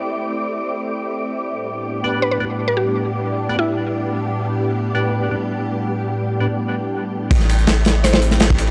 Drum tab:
RD |----------------|----------------|----------------|----------------|
HH |----------------|----------------|----------------|----------------|
SD |----------------|----------------|----------------|----------------|
BD |----------------|----------------|----------------|----------------|

RD |----------------|x-x-x-xxxxxxx-xx|
HH |----------------|xxxxx-x-x-xxx-x-|
SD |----------------|-o--o-o-oo-oo---|
BD |----------------|o------------o--|